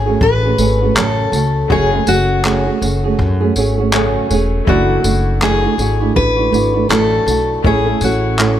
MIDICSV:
0, 0, Header, 1, 6, 480
1, 0, Start_track
1, 0, Key_signature, 3, "minor"
1, 0, Tempo, 743494
1, 1097, Time_signature, 4, 2, 24, 8
1, 5550, End_track
2, 0, Start_track
2, 0, Title_t, "Steel-string acoustic guitar"
2, 0, Program_c, 0, 25
2, 0, Note_on_c, 0, 68, 89
2, 143, Note_off_c, 0, 68, 0
2, 146, Note_on_c, 0, 71, 99
2, 629, Note_off_c, 0, 71, 0
2, 631, Note_on_c, 0, 69, 90
2, 1108, Note_off_c, 0, 69, 0
2, 1110, Note_on_c, 0, 68, 84
2, 1345, Note_on_c, 0, 66, 81
2, 1351, Note_off_c, 0, 68, 0
2, 2756, Note_off_c, 0, 66, 0
2, 3026, Note_on_c, 0, 66, 78
2, 3506, Note_on_c, 0, 68, 94
2, 3516, Note_off_c, 0, 66, 0
2, 3976, Note_off_c, 0, 68, 0
2, 3978, Note_on_c, 0, 71, 98
2, 4457, Note_off_c, 0, 71, 0
2, 4459, Note_on_c, 0, 69, 89
2, 4912, Note_off_c, 0, 69, 0
2, 4950, Note_on_c, 0, 68, 83
2, 5190, Note_off_c, 0, 68, 0
2, 5191, Note_on_c, 0, 66, 72
2, 5550, Note_off_c, 0, 66, 0
2, 5550, End_track
3, 0, Start_track
3, 0, Title_t, "Grand piano"
3, 0, Program_c, 1, 0
3, 0, Control_c, 1, 64, 127
3, 0, Note_on_c, 1, 57, 59
3, 0, Note_on_c, 1, 66, 58
3, 0, Note_on_c, 1, 73, 62
3, 0, Note_on_c, 1, 80, 59
3, 1066, Note_off_c, 1, 66, 0
3, 1070, Note_off_c, 1, 80, 0
3, 1074, Note_off_c, 1, 57, 0
3, 1076, Note_off_c, 1, 73, 0
3, 1084, Note_on_c, 1, 57, 65
3, 1093, Note_on_c, 1, 66, 55
3, 1100, Note_on_c, 1, 68, 57
3, 1109, Note_on_c, 1, 73, 76
3, 2505, Note_off_c, 1, 57, 0
3, 2510, Note_off_c, 1, 66, 0
3, 2513, Note_off_c, 1, 68, 0
3, 2518, Note_off_c, 1, 73, 0
3, 2529, Note_on_c, 1, 57, 59
3, 2532, Note_on_c, 1, 66, 58
3, 2537, Note_on_c, 1, 68, 55
3, 2538, Note_on_c, 1, 73, 61
3, 2992, Note_off_c, 1, 57, 0
3, 3002, Note_on_c, 1, 57, 63
3, 3014, Note_off_c, 1, 66, 0
3, 3015, Note_on_c, 1, 64, 56
3, 3017, Note_off_c, 1, 68, 0
3, 3018, Note_off_c, 1, 73, 0
3, 3023, Note_on_c, 1, 66, 58
3, 3025, Control_c, 1, 64, 0
3, 3031, Note_on_c, 1, 74, 69
3, 3129, Control_c, 1, 64, 127
3, 4903, Note_off_c, 1, 57, 0
3, 4910, Note_off_c, 1, 64, 0
3, 4914, Note_off_c, 1, 66, 0
3, 4917, Note_off_c, 1, 74, 0
3, 4923, Note_on_c, 1, 57, 68
3, 4932, Note_on_c, 1, 61, 60
3, 4942, Note_on_c, 1, 64, 59
3, 4945, Control_c, 1, 64, 0
3, 4948, Note_on_c, 1, 73, 75
3, 5050, Control_c, 1, 64, 127
3, 5550, Note_off_c, 1, 57, 0
3, 5550, Note_off_c, 1, 61, 0
3, 5550, Note_off_c, 1, 64, 0
3, 5550, Note_off_c, 1, 73, 0
3, 5550, End_track
4, 0, Start_track
4, 0, Title_t, "Nylon-string guitar"
4, 0, Program_c, 2, 24
4, 38, Note_on_c, 2, 68, 52
4, 46, Note_on_c, 2, 66, 50
4, 52, Note_on_c, 2, 61, 46
4, 61, Note_on_c, 2, 57, 45
4, 272, Note_off_c, 2, 68, 0
4, 279, Note_on_c, 2, 68, 50
4, 283, Note_off_c, 2, 66, 0
4, 286, Note_off_c, 2, 61, 0
4, 291, Note_off_c, 2, 57, 0
4, 291, Note_on_c, 2, 66, 52
4, 298, Note_on_c, 2, 61, 45
4, 302, Note_on_c, 2, 57, 38
4, 367, Note_off_c, 2, 57, 0
4, 375, Note_off_c, 2, 61, 0
4, 375, Note_on_c, 2, 57, 60
4, 376, Note_off_c, 2, 68, 0
4, 382, Note_off_c, 2, 66, 0
4, 382, Note_on_c, 2, 61, 62
4, 390, Note_on_c, 2, 66, 66
4, 396, Note_on_c, 2, 68, 77
4, 517, Note_off_c, 2, 68, 0
4, 520, Note_off_c, 2, 57, 0
4, 523, Note_off_c, 2, 61, 0
4, 524, Note_off_c, 2, 66, 0
4, 525, Note_on_c, 2, 68, 50
4, 532, Note_on_c, 2, 66, 45
4, 539, Note_on_c, 2, 61, 45
4, 546, Note_on_c, 2, 57, 40
4, 614, Note_off_c, 2, 57, 0
4, 614, Note_on_c, 2, 42, 70
4, 617, Note_off_c, 2, 61, 0
4, 618, Note_off_c, 2, 66, 0
4, 618, Note_on_c, 2, 49, 71
4, 619, Note_off_c, 2, 68, 0
4, 622, Note_on_c, 2, 57, 71
4, 625, Note_on_c, 2, 61, 83
4, 626, Note_on_c, 2, 66, 80
4, 842, Note_off_c, 2, 57, 0
4, 850, Note_on_c, 2, 57, 57
4, 852, Note_off_c, 2, 61, 0
4, 856, Note_off_c, 2, 42, 0
4, 858, Note_off_c, 2, 49, 0
4, 860, Note_on_c, 2, 61, 60
4, 861, Note_off_c, 2, 66, 0
4, 870, Note_on_c, 2, 66, 58
4, 1093, Note_off_c, 2, 57, 0
4, 1097, Note_on_c, 2, 42, 74
4, 1098, Note_off_c, 2, 61, 0
4, 1098, Note_on_c, 2, 49, 82
4, 1102, Note_off_c, 2, 66, 0
4, 1105, Note_on_c, 2, 57, 75
4, 1106, Note_on_c, 2, 61, 77
4, 1109, Note_on_c, 2, 68, 88
4, 1110, Note_on_c, 2, 66, 80
4, 1228, Note_off_c, 2, 68, 0
4, 1234, Note_off_c, 2, 66, 0
4, 1241, Note_off_c, 2, 42, 0
4, 1242, Note_off_c, 2, 49, 0
4, 1242, Note_on_c, 2, 66, 42
4, 1245, Note_off_c, 2, 57, 0
4, 1245, Note_off_c, 2, 61, 0
4, 1252, Note_on_c, 2, 61, 43
4, 1258, Note_on_c, 2, 57, 37
4, 1322, Note_off_c, 2, 57, 0
4, 1330, Note_on_c, 2, 57, 50
4, 1332, Note_off_c, 2, 61, 0
4, 1338, Note_off_c, 2, 66, 0
4, 1340, Note_on_c, 2, 61, 55
4, 1346, Note_on_c, 2, 66, 57
4, 1352, Note_on_c, 2, 68, 57
4, 1569, Note_off_c, 2, 57, 0
4, 1573, Note_off_c, 2, 61, 0
4, 1573, Note_on_c, 2, 42, 62
4, 1576, Note_on_c, 2, 49, 66
4, 1577, Note_on_c, 2, 57, 72
4, 1578, Note_off_c, 2, 66, 0
4, 1579, Note_off_c, 2, 68, 0
4, 1581, Note_on_c, 2, 61, 72
4, 1586, Note_on_c, 2, 66, 84
4, 1587, Note_on_c, 2, 68, 74
4, 1706, Note_off_c, 2, 68, 0
4, 1714, Note_off_c, 2, 66, 0
4, 1714, Note_on_c, 2, 68, 55
4, 1719, Note_off_c, 2, 42, 0
4, 1721, Note_off_c, 2, 49, 0
4, 1721, Note_off_c, 2, 57, 0
4, 1722, Note_on_c, 2, 66, 49
4, 1723, Note_off_c, 2, 61, 0
4, 1730, Note_on_c, 2, 61, 43
4, 1734, Note_on_c, 2, 57, 45
4, 1801, Note_off_c, 2, 57, 0
4, 1809, Note_on_c, 2, 57, 55
4, 1810, Note_off_c, 2, 61, 0
4, 1814, Note_off_c, 2, 68, 0
4, 1817, Note_on_c, 2, 61, 54
4, 1818, Note_off_c, 2, 66, 0
4, 1826, Note_on_c, 2, 66, 62
4, 1831, Note_on_c, 2, 68, 57
4, 1954, Note_off_c, 2, 68, 0
4, 1957, Note_off_c, 2, 57, 0
4, 1961, Note_off_c, 2, 61, 0
4, 1961, Note_off_c, 2, 66, 0
4, 1962, Note_on_c, 2, 68, 56
4, 1969, Note_on_c, 2, 66, 58
4, 1976, Note_on_c, 2, 61, 50
4, 1984, Note_on_c, 2, 57, 51
4, 2190, Note_off_c, 2, 68, 0
4, 2197, Note_on_c, 2, 68, 54
4, 2198, Note_off_c, 2, 66, 0
4, 2206, Note_off_c, 2, 61, 0
4, 2206, Note_on_c, 2, 66, 47
4, 2213, Note_off_c, 2, 57, 0
4, 2214, Note_on_c, 2, 61, 48
4, 2221, Note_on_c, 2, 57, 41
4, 2287, Note_off_c, 2, 57, 0
4, 2295, Note_off_c, 2, 68, 0
4, 2295, Note_on_c, 2, 57, 73
4, 2298, Note_off_c, 2, 61, 0
4, 2300, Note_off_c, 2, 66, 0
4, 2306, Note_on_c, 2, 61, 79
4, 2311, Note_on_c, 2, 66, 77
4, 2316, Note_on_c, 2, 68, 85
4, 2431, Note_off_c, 2, 68, 0
4, 2439, Note_on_c, 2, 68, 56
4, 2440, Note_off_c, 2, 57, 0
4, 2441, Note_off_c, 2, 66, 0
4, 2446, Note_off_c, 2, 61, 0
4, 2449, Note_on_c, 2, 66, 51
4, 2457, Note_on_c, 2, 61, 48
4, 2463, Note_on_c, 2, 57, 49
4, 2535, Note_off_c, 2, 61, 0
4, 2536, Note_off_c, 2, 57, 0
4, 2536, Note_off_c, 2, 68, 0
4, 2536, Note_on_c, 2, 42, 85
4, 2540, Note_on_c, 2, 49, 89
4, 2541, Note_off_c, 2, 66, 0
4, 2543, Note_on_c, 2, 61, 85
4, 2544, Note_on_c, 2, 57, 95
4, 2550, Note_on_c, 2, 66, 99
4, 2553, Note_on_c, 2, 68, 87
4, 2764, Note_off_c, 2, 57, 0
4, 2772, Note_on_c, 2, 57, 68
4, 2774, Note_off_c, 2, 61, 0
4, 2777, Note_off_c, 2, 42, 0
4, 2779, Note_off_c, 2, 49, 0
4, 2780, Note_off_c, 2, 66, 0
4, 2781, Note_on_c, 2, 61, 68
4, 2785, Note_off_c, 2, 68, 0
4, 2788, Note_on_c, 2, 66, 65
4, 2796, Note_on_c, 2, 68, 72
4, 3010, Note_off_c, 2, 57, 0
4, 3010, Note_on_c, 2, 42, 79
4, 3017, Note_on_c, 2, 52, 77
4, 3018, Note_off_c, 2, 61, 0
4, 3018, Note_on_c, 2, 57, 88
4, 3021, Note_off_c, 2, 66, 0
4, 3021, Note_on_c, 2, 62, 85
4, 3024, Note_on_c, 2, 64, 82
4, 3026, Note_off_c, 2, 68, 0
4, 3029, Note_on_c, 2, 66, 79
4, 3243, Note_off_c, 2, 57, 0
4, 3251, Note_on_c, 2, 57, 51
4, 3252, Note_off_c, 2, 62, 0
4, 3254, Note_off_c, 2, 42, 0
4, 3257, Note_off_c, 2, 52, 0
4, 3260, Note_on_c, 2, 62, 52
4, 3261, Note_off_c, 2, 64, 0
4, 3263, Note_off_c, 2, 66, 0
4, 3268, Note_on_c, 2, 64, 65
4, 3272, Note_on_c, 2, 66, 64
4, 3487, Note_off_c, 2, 57, 0
4, 3487, Note_on_c, 2, 42, 72
4, 3490, Note_off_c, 2, 62, 0
4, 3494, Note_on_c, 2, 52, 74
4, 3494, Note_on_c, 2, 57, 73
4, 3495, Note_off_c, 2, 64, 0
4, 3495, Note_off_c, 2, 66, 0
4, 3497, Note_on_c, 2, 62, 66
4, 3502, Note_on_c, 2, 64, 83
4, 3503, Note_on_c, 2, 66, 73
4, 3623, Note_off_c, 2, 66, 0
4, 3630, Note_on_c, 2, 66, 60
4, 3631, Note_off_c, 2, 64, 0
4, 3636, Note_off_c, 2, 42, 0
4, 3639, Note_on_c, 2, 64, 49
4, 3640, Note_off_c, 2, 52, 0
4, 3640, Note_off_c, 2, 57, 0
4, 3640, Note_off_c, 2, 62, 0
4, 3648, Note_on_c, 2, 62, 47
4, 3654, Note_on_c, 2, 57, 42
4, 3719, Note_off_c, 2, 57, 0
4, 3727, Note_on_c, 2, 57, 54
4, 3728, Note_off_c, 2, 62, 0
4, 3732, Note_off_c, 2, 66, 0
4, 3736, Note_off_c, 2, 64, 0
4, 3736, Note_on_c, 2, 62, 51
4, 3743, Note_on_c, 2, 64, 67
4, 3751, Note_on_c, 2, 66, 62
4, 3864, Note_off_c, 2, 66, 0
4, 3872, Note_on_c, 2, 66, 52
4, 3873, Note_off_c, 2, 64, 0
4, 3876, Note_off_c, 2, 57, 0
4, 3881, Note_off_c, 2, 62, 0
4, 3881, Note_on_c, 2, 64, 53
4, 3888, Note_on_c, 2, 62, 50
4, 3896, Note_on_c, 2, 57, 45
4, 4101, Note_off_c, 2, 66, 0
4, 4108, Note_on_c, 2, 66, 43
4, 4110, Note_off_c, 2, 64, 0
4, 4116, Note_off_c, 2, 62, 0
4, 4117, Note_on_c, 2, 64, 46
4, 4123, Note_off_c, 2, 57, 0
4, 4124, Note_on_c, 2, 62, 41
4, 4131, Note_on_c, 2, 57, 43
4, 4192, Note_off_c, 2, 57, 0
4, 4200, Note_on_c, 2, 57, 64
4, 4201, Note_off_c, 2, 62, 0
4, 4208, Note_off_c, 2, 64, 0
4, 4209, Note_on_c, 2, 62, 66
4, 4211, Note_off_c, 2, 66, 0
4, 4216, Note_on_c, 2, 64, 68
4, 4225, Note_on_c, 2, 66, 70
4, 4340, Note_off_c, 2, 66, 0
4, 4348, Note_on_c, 2, 66, 52
4, 4351, Note_off_c, 2, 64, 0
4, 4352, Note_off_c, 2, 57, 0
4, 4354, Note_off_c, 2, 62, 0
4, 4359, Note_on_c, 2, 64, 46
4, 4361, Note_on_c, 2, 62, 48
4, 4370, Note_on_c, 2, 57, 44
4, 4441, Note_off_c, 2, 57, 0
4, 4441, Note_on_c, 2, 42, 72
4, 4446, Note_off_c, 2, 62, 0
4, 4446, Note_off_c, 2, 64, 0
4, 4449, Note_on_c, 2, 52, 79
4, 4449, Note_on_c, 2, 57, 82
4, 4450, Note_off_c, 2, 66, 0
4, 4454, Note_on_c, 2, 62, 89
4, 4454, Note_on_c, 2, 64, 80
4, 4460, Note_on_c, 2, 66, 92
4, 4680, Note_off_c, 2, 57, 0
4, 4688, Note_on_c, 2, 57, 59
4, 4689, Note_off_c, 2, 42, 0
4, 4690, Note_off_c, 2, 62, 0
4, 4693, Note_off_c, 2, 52, 0
4, 4695, Note_off_c, 2, 64, 0
4, 4697, Note_on_c, 2, 62, 63
4, 4698, Note_off_c, 2, 66, 0
4, 4702, Note_on_c, 2, 64, 68
4, 4711, Note_on_c, 2, 66, 70
4, 4931, Note_on_c, 2, 45, 84
4, 4932, Note_off_c, 2, 57, 0
4, 4935, Note_off_c, 2, 64, 0
4, 4936, Note_on_c, 2, 52, 73
4, 4937, Note_off_c, 2, 62, 0
4, 4939, Note_on_c, 2, 57, 77
4, 4942, Note_on_c, 2, 64, 88
4, 4943, Note_on_c, 2, 61, 83
4, 4944, Note_off_c, 2, 66, 0
4, 4946, Note_on_c, 2, 69, 83
4, 5065, Note_off_c, 2, 69, 0
4, 5072, Note_off_c, 2, 64, 0
4, 5073, Note_on_c, 2, 69, 51
4, 5078, Note_off_c, 2, 45, 0
4, 5080, Note_off_c, 2, 52, 0
4, 5080, Note_on_c, 2, 64, 47
4, 5082, Note_off_c, 2, 57, 0
4, 5082, Note_off_c, 2, 61, 0
4, 5090, Note_on_c, 2, 61, 44
4, 5096, Note_on_c, 2, 57, 39
4, 5164, Note_off_c, 2, 57, 0
4, 5172, Note_off_c, 2, 69, 0
4, 5172, Note_on_c, 2, 57, 58
4, 5176, Note_off_c, 2, 64, 0
4, 5177, Note_off_c, 2, 61, 0
4, 5184, Note_on_c, 2, 61, 63
4, 5190, Note_on_c, 2, 64, 56
4, 5194, Note_on_c, 2, 69, 60
4, 5408, Note_on_c, 2, 45, 75
4, 5410, Note_off_c, 2, 57, 0
4, 5411, Note_off_c, 2, 61, 0
4, 5412, Note_on_c, 2, 52, 68
4, 5413, Note_off_c, 2, 64, 0
4, 5417, Note_on_c, 2, 57, 70
4, 5418, Note_off_c, 2, 69, 0
4, 5419, Note_on_c, 2, 61, 70
4, 5421, Note_on_c, 2, 64, 77
4, 5426, Note_on_c, 2, 69, 73
4, 5546, Note_off_c, 2, 69, 0
4, 5550, Note_off_c, 2, 45, 0
4, 5550, Note_off_c, 2, 52, 0
4, 5550, Note_off_c, 2, 57, 0
4, 5550, Note_off_c, 2, 61, 0
4, 5550, Note_off_c, 2, 64, 0
4, 5550, End_track
5, 0, Start_track
5, 0, Title_t, "Upright bass"
5, 0, Program_c, 3, 32
5, 0, Note_on_c, 3, 32, 70
5, 94, Note_off_c, 3, 32, 0
5, 135, Note_on_c, 3, 33, 106
5, 332, Note_off_c, 3, 33, 0
5, 375, Note_on_c, 3, 32, 82
5, 572, Note_off_c, 3, 32, 0
5, 614, Note_on_c, 3, 33, 85
5, 812, Note_off_c, 3, 33, 0
5, 852, Note_on_c, 3, 37, 81
5, 1051, Note_off_c, 3, 37, 0
5, 1100, Note_on_c, 3, 30, 99
5, 1295, Note_off_c, 3, 30, 0
5, 1334, Note_on_c, 3, 30, 90
5, 1729, Note_off_c, 3, 30, 0
5, 1818, Note_on_c, 3, 30, 79
5, 2015, Note_off_c, 3, 30, 0
5, 2059, Note_on_c, 3, 42, 102
5, 2255, Note_off_c, 3, 42, 0
5, 2299, Note_on_c, 3, 32, 78
5, 2692, Note_off_c, 3, 32, 0
5, 2780, Note_on_c, 3, 28, 81
5, 2976, Note_off_c, 3, 28, 0
5, 3018, Note_on_c, 3, 30, 99
5, 3215, Note_off_c, 3, 30, 0
5, 3255, Note_on_c, 3, 30, 90
5, 3650, Note_off_c, 3, 30, 0
5, 3731, Note_on_c, 3, 32, 78
5, 3930, Note_off_c, 3, 32, 0
5, 3978, Note_on_c, 3, 33, 88
5, 4175, Note_off_c, 3, 33, 0
5, 4212, Note_on_c, 3, 32, 76
5, 4411, Note_off_c, 3, 32, 0
5, 4450, Note_on_c, 3, 33, 81
5, 4650, Note_off_c, 3, 33, 0
5, 4690, Note_on_c, 3, 35, 84
5, 4889, Note_off_c, 3, 35, 0
5, 4934, Note_on_c, 3, 33, 89
5, 5132, Note_off_c, 3, 33, 0
5, 5171, Note_on_c, 3, 33, 94
5, 5550, Note_off_c, 3, 33, 0
5, 5550, End_track
6, 0, Start_track
6, 0, Title_t, "Drums"
6, 136, Note_on_c, 9, 36, 97
6, 200, Note_off_c, 9, 36, 0
6, 377, Note_on_c, 9, 54, 61
6, 441, Note_off_c, 9, 54, 0
6, 624, Note_on_c, 9, 39, 104
6, 689, Note_off_c, 9, 39, 0
6, 860, Note_on_c, 9, 54, 64
6, 924, Note_off_c, 9, 54, 0
6, 1098, Note_on_c, 9, 36, 120
6, 1162, Note_off_c, 9, 36, 0
6, 1336, Note_on_c, 9, 54, 73
6, 1401, Note_off_c, 9, 54, 0
6, 1580, Note_on_c, 9, 39, 108
6, 1645, Note_off_c, 9, 39, 0
6, 1823, Note_on_c, 9, 54, 65
6, 1887, Note_off_c, 9, 54, 0
6, 2058, Note_on_c, 9, 36, 96
6, 2122, Note_off_c, 9, 36, 0
6, 2297, Note_on_c, 9, 54, 59
6, 2362, Note_off_c, 9, 54, 0
6, 2539, Note_on_c, 9, 39, 113
6, 2604, Note_off_c, 9, 39, 0
6, 2779, Note_on_c, 9, 54, 65
6, 2844, Note_off_c, 9, 54, 0
6, 3018, Note_on_c, 9, 36, 117
6, 3083, Note_off_c, 9, 36, 0
6, 3255, Note_on_c, 9, 54, 70
6, 3320, Note_off_c, 9, 54, 0
6, 3499, Note_on_c, 9, 39, 118
6, 3564, Note_off_c, 9, 39, 0
6, 3738, Note_on_c, 9, 54, 60
6, 3803, Note_off_c, 9, 54, 0
6, 3977, Note_on_c, 9, 36, 101
6, 4042, Note_off_c, 9, 36, 0
6, 4222, Note_on_c, 9, 54, 54
6, 4287, Note_off_c, 9, 54, 0
6, 4464, Note_on_c, 9, 39, 113
6, 4528, Note_off_c, 9, 39, 0
6, 4698, Note_on_c, 9, 54, 62
6, 4762, Note_off_c, 9, 54, 0
6, 4935, Note_on_c, 9, 36, 123
6, 5000, Note_off_c, 9, 36, 0
6, 5171, Note_on_c, 9, 54, 68
6, 5235, Note_off_c, 9, 54, 0
6, 5416, Note_on_c, 9, 39, 114
6, 5480, Note_off_c, 9, 39, 0
6, 5550, End_track
0, 0, End_of_file